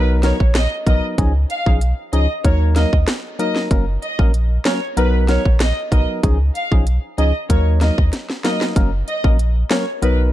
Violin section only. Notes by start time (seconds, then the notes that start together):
0.24 C#5
0.55 D#5
0.87 D#5
1.50 F5
2.13 D#5
2.44 C#5
2.76 D#5
3.39 D#5
4.02 D#5
4.66 C#5
4.97 B4
5.29 C#5
5.60 D#5
5.92 D#5
6.55 F5
7.18 D#5
7.50 C#5
7.81 D#5
8.44 D#5
9.08 D#5
9.71 C#5
10.02 B4